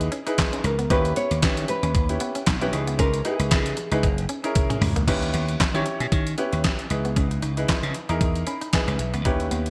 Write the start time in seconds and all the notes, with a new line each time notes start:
Already playing: D#4 E4 G#4 B4
0.01 closed hi-hat
0.12 C#4, closed hi-hat
0.26 D#4 E4 G#4 B4, closed hi-hat
0.38 kick, snare, clap, closed hi-hat
0.53 C#4, closed hi-hat
0.64 C#2 A#4, muted clean electric guitar stroke, closed hi-hat
0.79 B3, closed hi-hat
0.90 D#2 C#4 D#4 E4 G4 B4, kick, closed hi-hat
1.05 muted clean electric guitar stroke, closed hi-hat
1.16 B3 C#5, closed hi-hat
1.31 D#2, closed hi-hat
1.42 D#3 C#4 D#4 E4 G4 B4, kick, snare, clap, closed hi-hat
1.57 closed hi-hat
1.68 B4, muted clean electric guitar stroke, closed hi-hat
1.83 D#2 C#4, closed hi-hat
1.95 D#2, muted clean electric guitar stroke, kick, closed hi-hat
2.09 C#4 E4 G4 B4, closed hi-hat
2.20 B3, closed hi-hat
2.35 C#4, closed hi-hat
2.46 B1 D#4, kick, snare, clap, closed hi-hat
2.61 C#4 E4 G4 B4, muted clean electric guitar stroke, closed hi-hat
2.72 C#2 D#4 E4 G#4 B4, closed hi-hat
2.87 B3, closed hi-hat
2.99 C#2 C#4 A#4, kick, closed hi-hat
3.14 muted clean electric guitar stroke, closed hi-hat
3.25 D#4 E4 G#4 B4, closed hi-hat
3.39 C#2, closed hi-hat
3.51 C#3 E4, kick, snare, clap, closed hi-hat
3.66 closed hi-hat
3.77 muted clean electric guitar stroke, closed hi-hat
3.91 C#2 D#4 E4 G#4 B4, closed hi-hat
4.03 F#1, muted clean electric guitar stroke, kick, closed hi-hat
4.18 closed hi-hat
4.29 C#4, closed hi-hat
4.43 C#4 D#4 E4 G#4 A#4, closed hi-hat
4.55 kick, closed hi-hat, high tom
4.70 C#4, closed hi-hat, mid tom
4.81 C#2, muted clean electric guitar stroke, mid tom, open hi-hat
4.96 A#3, closed hi-hat, floor tom
5.07 D#2 C#4 D#4 E4 G4 B4, kick, closed hi-hat, crash
5.22 muted clean electric guitar stroke, closed hi-hat
5.34 D#2 B3, closed hi-hat
5.49 closed hi-hat
5.60 D#4, kick, snare, clap, closed hi-hat
5.74 D#3 C#4 E4 G4 C#5, closed hi-hat
5.86 muted clean electric guitar stroke, closed hi-hat
6.00 B2 C#4, closed hi-hat
6.12 D#3, muted clean electric guitar stroke, kick, closed hi-hat
6.27 closed hi-hat
6.38 B3 C#4 E4 G4 B4, closed hi-hat
6.53 D#2 C#4, closed hi-hat
6.64 D#4, kick, snare, clap, closed hi-hat
6.79 muted clean electric guitar stroke, closed hi-hat
6.90 C#2 D#4 E4 G#4 B4, closed hi-hat
7.05 B3, closed hi-hat
7.16 C#2 C#4, kick, closed hi-hat
7.31 muted clean electric guitar stroke, closed hi-hat
7.42 C#2 D#4, closed hi-hat
7.57 D#4 E4 G#4 B4, closed hi-hat
7.68 E4, kick, snare, clap, closed hi-hat
7.83 C#3, closed hi-hat
7.94 muted clean electric guitar stroke, closed hi-hat
8.09 E2 D#4 E4 G#4 A#4, closed hi-hat
8.21 E2, muted clean electric guitar stroke, kick, closed hi-hat
8.36 closed hi-hat
8.47 C#4 B5, closed hi-hat
8.61 D#4, closed hi-hat
8.73 D#4 E4 G#4 B4 G#5, kick, snare, clap, closed hi-hat
8.88 C#2 C#4, closed hi-hat
8.99 B1 E5, muted clean electric guitar stroke, closed hi-hat
9.14 C#2 B3, closed hi-hat
9.25 D#2 C#4 D#4 E4 G4 B4, kick, closed hi-hat
9.40 muted clean electric guitar stroke, closed hi-hat
9.51 D#2 B3, closed hi-hat
9.66 closed hi-hat